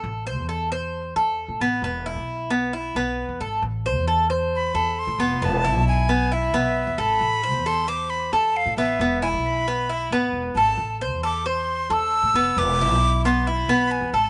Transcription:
<<
  \new Staff \with { instrumentName = "Flute" } { \time 4/4 \key a \minor \tempo 4 = 134 r1 | r1 | r2 b''4 c'''4 | a''4 gis''4 e''4. b''8~ |
b''4 c'''8 d'''8 b''8 a''8 f''8 e''8~ | e''8 gis''8 b''2 r8 a''8~ | a''8 r8 d'''8 c'''4 e'''4. | d'''4. c'''8 b''4 gis''8 a''8 | }
  \new Staff \with { instrumentName = "Cuban tres" } { \time 4/4 \key a \minor a'8 c''8 a'8 c''4 a'4 b8 | b8 e'4 b8 e'8 b4 a'8 | r8 c''8 a'8 c''4 a'4 b8 | b8 e'4 b8 e'8 b4 a'8~ |
a'8 c''8 a'8 c''4 a'4 b8 | b8 e'4 b8 e'8 b4 a'8~ | a'8 c''8 a'8 c''4 a'4 b8 | b8 e'4 b8 e'8 b4 a'8 | }
  \new Staff \with { instrumentName = "Upright bass" } { \clef bass \time 4/4 \key a \minor a,,8. e,4.~ e,16 e,8. a,16 a,,8 | e,,8. b,,4.~ b,,16 b,,8. e,16 gis,,8 | a,,8. e,4.~ e,16 e,8. a,16 f,,8 | e,,8. b,,4.~ b,,16 b,,8. e,16 gis,,8 |
a,,8. e,4.~ e,16 e,8. a,16 a,,8 | e,,8. b,,4.~ b,,16 d,,8 e,,8 gis,,8 | a,,8. e,4.~ e,16 e,8. a,16 f,,8 | e,,8. b,,4.~ b,,16 b,,8. e,16 gis,,8 | }
>>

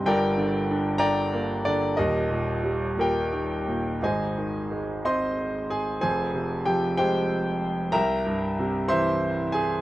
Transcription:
<<
  \new Staff \with { instrumentName = "Grand piano" } { \time 6/8 \key ees \major \tempo 4. = 62 << { g''4. bes''4 d''8 | ees''4. g''4. | \key aes \major aes''4. c'''4 aes''8 | aes''4 g''8 g''4. |
bes''4. c'''4 aes''8 | } \\ { <bes' d''>4. <d'' g''>4. | <g' bes'>4. <g' bes'>4. | <aes' c'' ees''>4. <c'' ees''>4 aes'8 | <aes' c''>4 g'8 <g' c''>4. |
<bes' e'' g''>4. <c'' e''>4 aes'8 | } >> }
  \new Staff \with { instrumentName = "Grand piano" } { \clef bass \time 6/8 \key ees \major <g,, g,>8 d8 d'8 d8 bes8 d8 | <ees,, ees,>8 bes,8 g8 bes,8 ees8 bes,8 | \key aes \major <aes,, aes,>8 ees8 aes8 c'4. | <f,, f,>8 c8 f8 aes4. |
c,8 g,8 c8 e4. | }
>>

